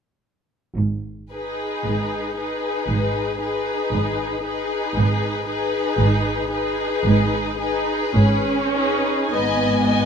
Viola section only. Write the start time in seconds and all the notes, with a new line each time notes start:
1.32 D#4
2.39 D#4
3.42 D#4
4.46 D#4
5.48 D#4
6.53 D#4
7.59 D#4
8.15 C#4
8.74 D#4
9.32 B3